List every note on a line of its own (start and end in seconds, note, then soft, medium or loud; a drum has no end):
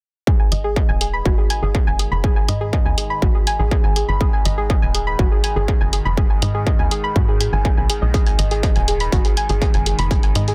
0.27 10.55 G#2 medium
0.27 10.55 D#3 medium
0.27 0.37 G#4 medium
0.27 kick loud
0.40 0.51 G#5 medium
0.52 0.85 G#1 loud
0.52 0.62 D#5 medium
0.52 closed hi-hat loud
0.64 0.76 G#4 loud
0.76 0.88 D#5 medium
0.76 kick loud
0.89 1.22 D#1 medium
0.89 1.00 G#5 loud
1.01 1.07 G#4 medium
1.01 closed hi-hat loud
1.13 1.23 B5 loud
1.26 1.36 G#1 medium
1.26 1.35 F#4 medium
1.26 kick loud
1.38 1.44 G#4 medium
1.50 1.60 G#5 loud
1.50 closed hi-hat loud
1.62 1.83 G#1 medium
1.62 1.74 G#4 loud
1.75 1.85 G#4 medium
1.75 kick loud
1.87 2.07 F#1 loud
1.87 1.99 G#5 loud
1.99 2.05 G#4 medium
1.99 closed hi-hat loud
2.12 2.45 F#1 medium
2.12 2.21 B5 loud
2.24 2.34 G#4 medium
2.24 kick loud
2.36 2.48 G#5 medium
2.48 2.82 G#2 medium
2.48 2.58 D#5 medium
2.48 closed hi-hat loud
2.61 2.73 G#4 loud
2.73 2.85 D#5 medium
2.73 kick loud
2.86 2.96 D#2 medium
2.86 2.97 G#5 loud
2.98 3.04 G#4 medium
2.98 closed hi-hat loud
3.10 3.20 B5 loud
3.22 3.32 A#1 medium
3.22 3.32 F#4 medium
3.22 kick loud
3.35 3.41 G#4 medium
3.47 3.57 G#5 loud
3.47 closed hi-hat loud
3.59 3.79 A#1 medium
3.59 3.70 G#4 loud
3.71 3.81 G#4 medium
3.71 kick loud
3.84 4.04 G#1 medium
3.84 3.96 G#5 medium
3.96 4.02 G#4 medium
3.96 closed hi-hat loud
4.08 4.42 G#1 medium
4.08 4.18 B5 loud
4.21 4.31 G#4 medium
4.21 kick loud
4.33 4.45 G#5 medium
4.45 4.79 G#1 loud
4.45 4.55 D#5 medium
4.45 closed hi-hat loud
4.58 4.69 G#4 loud
4.70 4.82 D#5 medium
4.70 kick loud
4.82 5.15 D#1 medium
4.82 4.94 G#5 loud
4.95 5.00 G#4 medium
4.95 closed hi-hat loud
5.07 5.17 B5 loud
5.19 5.29 G#1 medium
5.19 5.29 F#4 medium
5.19 kick loud
5.32 5.37 G#4 medium
5.44 5.54 G#5 loud
5.44 closed hi-hat loud
5.56 5.76 G#1 medium
5.56 5.67 G#4 medium
5.68 5.78 G#4 medium
5.68 kick loud
5.81 6.01 F#1 loud
5.81 5.92 G#5 loud
5.93 5.99 G#4 medium
5.93 closed hi-hat loud
6.05 6.39 F#1 medium
6.05 6.15 B5 loud
6.17 6.27 G#4 medium
6.17 kick loud
6.30 6.42 G#5 medium
6.42 6.75 G#2 medium
6.42 6.52 D#5 medium
6.42 closed hi-hat loud
6.54 6.66 G#4 loud
6.67 6.78 D#5 medium
6.67 kick loud
6.79 6.89 D#2 medium
6.79 6.91 G#5 loud
6.91 6.97 G#4 medium
6.91 closed hi-hat loud
7.04 7.13 B5 loud
7.16 7.49 G#2 loud
7.16 7.26 F#4 medium
7.16 kick loud
7.28 7.34 G#4 medium
7.41 7.50 G#4 medium
7.41 closed hi-hat loud
7.53 7.73 G#1 loud
7.53 7.64 G#5 loud
7.65 7.75 G#4 medium
7.65 kick loud
7.77 7.87 B1 loud
7.77 7.83 G#5 medium
7.90 7.96 G#4 medium
7.90 closed hi-hat loud
8.02 8.35 B1 medium
8.02 8.12 D#5 medium
8.14 8.24 G#4 medium
8.14 kick loud
8.14 closed hi-hat medium
8.27 8.38 G#5 medium
8.27 closed hi-hat soft
8.39 8.72 G#1 medium
8.39 8.49 D#5 medium
8.39 closed hi-hat medium
8.51 8.63 G#4 loud
8.51 closed hi-hat soft
8.63 8.75 D#5 medium
8.63 kick loud
8.63 closed hi-hat medium
8.76 9.09 D#1 medium
8.76 8.87 G#5 loud
8.76 closed hi-hat soft
8.88 8.94 G#4 medium
8.88 closed hi-hat loud
9.00 9.10 B5 loud
9.00 closed hi-hat soft
9.12 9.23 G#1 medium
9.12 9.22 F#4 medium
9.12 kick loud
9.12 closed hi-hat medium
9.25 9.31 G#4 medium
9.25 closed hi-hat soft
9.37 9.47 G#5 loud
9.37 closed hi-hat loud
9.49 9.70 G#1 medium
9.49 9.61 G#4 loud
9.49 closed hi-hat soft
9.62 9.72 G#4 loud
9.62 kick loud
9.62 closed hi-hat medium
9.74 9.94 F#1 loud
9.74 9.86 G#5 loud
9.74 closed hi-hat soft
9.86 9.92 G#4 medium
9.86 closed hi-hat loud
9.98 10.32 F#1 loud
9.98 10.08 B5 loud
9.98 closed hi-hat soft
10.11 10.21 G#4 medium
10.11 kick loud
10.11 closed hi-hat medium
10.23 10.35 G#5 medium
10.23 closed hi-hat soft
10.35 10.55 G#2 medium
10.35 10.45 D#5 medium
10.35 closed hi-hat medium
10.48 10.55 G#4 loud
10.48 closed hi-hat soft